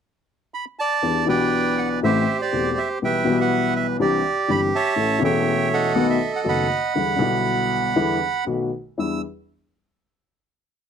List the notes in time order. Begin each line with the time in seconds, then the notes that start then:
0.54 B5
0.79 D5 A5
1.02 E2 E3 B3 D4 G4
1.26 B1 B2 E3 B3 D4 G4 B4 D5 G5
1.78 F#5
2.03 A1 A2 E3 A3 C4 G4 C5 E5
2.42 G4 D5
2.53 E1 E2 E3 A3 C4 G4
2.78 E5
3.02 B1 B2 E3 G3 B3 G4 B4 E5 G5
3.24 B1 B2 E3 G3 B3 G4
3.41 B4 F#5
3.76 E5
3.99 C2 C3 E3 C4 D4 G4 D5
4.48 G1 G2 E3 C4 D4 G4 B5
4.75 C#5 E5 A5
4.96 A1 A2 E3 A3 C#4 A4
5.19 E1 E2 E3 A3 C#4
5.23 A4 C#5 E5 G5
5.73 A4 D#5 F#5
5.95 B1 B2 D#3 A3 B3 F#4
6.10 E5
6.36 F#5
6.44 F#1 F#2 D#3 A3 B3 F#4
6.48 D#5 F#5 B5
6.95 E2 D3 E3 G3 B3 E4
7.16 B1 B2 D3 G3 B3
7.21 E4
7.96 E2 D3 E3 G3 B3 E4
8.46 B1 B2 D#3 A3 B3 F#4
8.98 E2 G3 D4 E4 E6